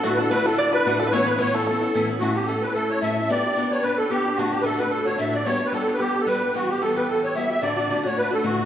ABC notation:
X:1
M:4/4
L:1/16
Q:"Swing" 1/4=222
K:Amix
V:1 name="Accordion"
F3/2 B/2 A2 B2 A2 d2 B4 A B | c2 B2 c2 A2 A6 z2 | F2 G2 A2 B2 A2 c2 e2 e2 | d6 c2 B2 A2 G4 |
F2 G3/2 B/2 A2 B2 A2 c2 e2 d2 | c3 B A3 B G3 A B4 | F2 G2 A2 B2 A2 c2 e2 e2 | d6 c2 B2 A2 F4 |]
V:2 name="Five-string banjo"
F2 A2 B2 A2 d2 B4 A B | c2 B2 c2 A2 A6 z2 | z16 | z16 |
z16 | z16 | z16 | z16 |]
V:3 name="Flute"
F2 z2 B2 A2 d2 B4 A B | c2 B2 c2 A2 A6 z2 | z16 | z16 |
z16 | z16 | z16 | z16 |]
V:4 name="Steel-string acoustic guitar"
[D,,A,,D,DEF]2 [D,DEF]2 [D,,A,,D,DEF]2 [D,DEF]2 [D,DEF]2 [D,DEF]2 [D,,A,,D,DEF]2 [D,DEF]2 | [A,,E,B,CE]2 [B,CE]2 [A,,E,B,CE]2 [B,CE]2 [E,B,CE]2 [B,CE]2 [A,,E,B,CE]2 [B,CE]2 | [A,,A,CEA]2 [CEA]2 [A,,A,CEA]2 [CEA]2 [A,CEA]2 [CEA]2 [A,,A,CEA]2 [CEA]2 | [B,DGB]2 [DGB]2 [B,DGB]2 [DGB]2 [B,DGB]2 [DGB]2 [B,DGB]2 [DGB]2 |
[D,,A,,D,A,DF]2 [D,A,DF]2 [D,,A,,D,A,DF]2 [D,A,DF]2 [D,A,DF]2 [D,A,DF]2 [D,,A,,D,A,DF]2 [D,A,DF]2 | [G,B,DG]2 [B,DG]2 [G,B,DG]2 [B,DG]2 [G,B,DG]2 [B,DG]2 [G,B,DG]2 [B,DG]2 | [E,G,B,G]2 [G,B,G]2 [E,G,B,G]2 [G,B,G]2 [E,G,B,G]2 [G,B,G]2 [E,G,B,G]2 [G,B,G]2 | [D,,A,,D,A,DF]2 [D,A,DF]2 [D,,A,,D,A,DF]2 [D,A,DF]2 [D,A,DF]2 [D,A,DF]2 [D,,A,,D,A,DF]2 [D,A,DF]2 |]